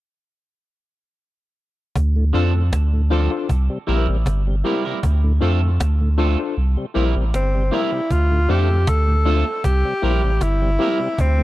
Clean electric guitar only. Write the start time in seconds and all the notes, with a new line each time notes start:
2.33 F3 C4 D4 A4
3.11 F3 C4 D4 A4
3.87 G3 C4 E4 A#4
4.65 G3 C4 E4 A#4
4.85 G3 C4 E4 A#4
5.41 A3 C4 F4 A4
6.18 A3 C4 F4 A4
6.95 G3 C4 E4 A#4
7.72 G3 C4 E4 A#4
7.92 muted clean electric guitar stroke
8.49 A3 C4 F4 A4
9.25 A3 C4 F4 A4
9.46 muted clean electric guitar stroke
10.03 G3 C4 E4 A#4
10.23 muted clean electric guitar stroke
10.80 G3 C4 E4 A#4
11.00 muted clean electric guitar stroke